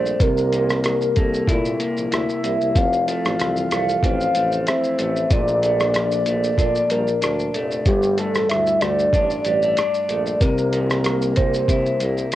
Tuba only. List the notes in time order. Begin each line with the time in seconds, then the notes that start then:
Already playing: A#1
0.20 C2
1.17 C2
1.48 A#2
1.79 A#1
1.97 A#1
2.12 D2
2.44 C2
2.61 C2
2.76 F1
3.25 A1
3.40 C2
3.71 C2
4.03 A1
4.35 A1
4.99 A1
5.30 A#1
6.27 A#1
6.58 A#2
6.91 A#1
7.23 D2
7.54 F1
7.85 G1
8.35 A1
8.49 D2
8.82 D2
9.13 A1
9.46 A1
10.09 A#1
10.41 C2
11.37 C2
11.68 C3
12.00 C2